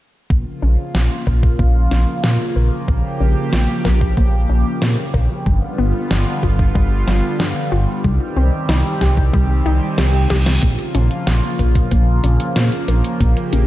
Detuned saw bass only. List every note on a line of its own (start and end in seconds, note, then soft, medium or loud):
0.30 0.45 A#1 medium
0.62 0.77 A#1 loud
0.95 1.09 A#1 medium
1.27 1.56 A#1 medium
1.59 1.88 A#1 loud
1.91 2.06 A#1 loud
2.24 2.38 A#2 medium
2.56 2.70 A#1 medium
2.88 3.03 A#1 loud
3.20 3.35 A#1 loud
3.53 3.67 A#1 medium
3.85 4.14 A#1 medium
4.17 4.46 A#1 loud
4.49 4.64 A#1 loud
4.82 4.96 A#2 medium
5.14 5.28 A#1 medium
5.46 5.61 G1 loud
5.78 5.93 G1 loud
6.11 6.25 G1 medium
6.43 6.72 G1 medium
6.75 7.04 G1 loud
7.07 7.22 G1 loud
7.40 7.54 G2 medium
7.72 7.86 G1 medium
8.04 8.19 C2 medium
8.36 8.51 C2 loud
8.69 8.83 C2 medium
9.01 9.30 C2 medium
9.34 9.62 C2 loud
9.65 9.80 C2 loud
9.98 10.27 C2 medium
10.30 10.59 C2 loud
10.63 10.77 A#1 loud
10.95 11.09 A#1 loud
11.27 11.41 A#1 medium
11.59 11.88 A#1 medium
11.91 12.20 A#1 loud
12.24 12.38 A#1 loud
12.56 12.70 A#2 medium
12.88 13.03 A#1 medium
13.21 13.35 A#1 loud
13.53 13.67 A#1 loud